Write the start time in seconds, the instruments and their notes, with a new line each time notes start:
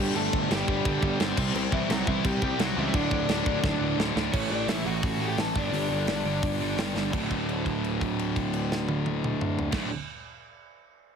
Already playing: overdriven electric guitar G3 G4
0.00 distorted electric guitar G2 D3 G3
0.15 picked electric bass G1, distorted electric guitar G2 D3 G3, overdriven electric guitar A3 A4, crash
0.33 picked electric bass G1, kick
0.50 picked electric bass G1, distorted electric guitar G2 D3 G3, overdriven electric guitar G3 G4, snare, crash
0.66 picked electric bass G1, distorted electric guitar G2 D3 G3, kick
0.85 picked electric bass G1, distorted electric guitar G2 D3 G3, kick, crash
1.02 picked electric bass G1, kick
1.20 picked electric bass G1, distorted electric guitar G2 D3 G3, overdriven electric guitar C4 C5, snare, crash
1.37 picked electric bass C2, distorted electric guitar C3 G3 C4, kick, crash
1.55 picked electric bass C2, distorted electric guitar C3 G3 C4, overdriven electric guitar C4 C5, crash
1.72 picked electric bass C2, overdriven electric guitar E3 E4, kick
1.89 picked electric bass C2, distorted electric guitar C3 G3 C4, overdriven electric guitar F#3 F#4, snare, crash
2.07 picked electric bass C2, distorted electric guitar C3 G3 C4, overdriven electric guitar E3 E4, kick
2.25 picked electric bass C2, distorted electric guitar C3 G3 C4, overdriven electric guitar G3 G4, kick, crash
2.42 picked electric bass C2, overdriven electric guitar G3 G4, kick
2.59 picked electric bass C2, distorted electric guitar C3 G3 C4, overdriven electric guitar F#3 F#4, snare, crash
2.76 picked electric bass C#2, distorted electric guitar C3 G3 C4, overdriven electric guitar E3 E4
2.93 picked electric bass D1, distorted electric guitar D2 A2 D3, overdriven electric guitar D4 D5, kick, crash
3.11 picked electric bass D1, kick
3.28 picked electric bass D1, distorted electric guitar D2 A2 D3, snare, crash
3.45 picked electric bass D1, distorted electric guitar D2 A2 D3, kick
3.63 picked electric bass D1, distorted electric guitar D2 A2 D3, kick, snare
3.81 picked electric bass D1
3.97 picked electric bass D1, distorted electric guitar D2 A2 D3, snare
4.16 picked electric bass D1, distorted electric guitar D2 A2 D3, snare
4.33 picked electric bass A1, distorted electric guitar A2 E3 A3, overdriven electric guitar C#4 C#5, kick, crash
4.51 picked electric bass A1, distorted electric guitar A2 E3 A3, overdriven electric guitar D4 D5
4.68 picked electric bass A1, distorted electric guitar A2 E3 A3, overdriven electric guitar E4 E5, snare, open hi-hat
4.85 picked electric bass A1, distorted electric guitar A2 E3 A3, overdriven electric guitar F#4 F#5
5.03 picked electric bass A1, distorted electric guitar A2 E3 A3, kick, open hi-hat
5.21 distorted electric guitar A2 E3 A3
5.27 overdriven electric guitar G4 G5
5.38 picked electric bass A1, distorted electric guitar A2 E3 A3, overdriven electric guitar A4 A5, snare, open hi-hat
5.55 picked electric bass G1, distorted electric guitar G2 D3 G3, overdriven electric guitar D4 D5, kick
5.72 picked electric bass G1, distorted electric guitar G2 D3 G3, open hi-hat
5.90 picked electric bass G1, distorted electric guitar G2 D3 G3
6.07 picked electric bass G1, distorted electric guitar G2 D3 G3, snare, open hi-hat
6.24 picked electric bass G1, distorted electric guitar G2 D3 G3
6.43 picked electric bass G1, distorted electric guitar G2 D3 G3, kick, open hi-hat
6.61 distorted electric guitar G2 D3 G3
6.77 picked electric bass G1, distorted electric guitar G2 D3 G3, snare, open hi-hat
6.95 picked electric bass G1, distorted electric guitar G2 D3 G3, snare
7.12 picked electric bass D1, distorted electric guitar D2 A2, kick, crash
7.16 distorted electric guitar D3
7.31 kick, crash
7.49 crash
7.66 kick, crash
7.84 crash
8.01 kick, crash
8.19 crash
8.36 kick, crash
8.53 crash
8.72 snare
8.89 high tom
9.06 high tom
9.24 mid tom
9.41 mid tom
9.59 floor tom
9.71 picked electric bass D1, distorted electric guitar D2 A2 D3, kick, snare, crash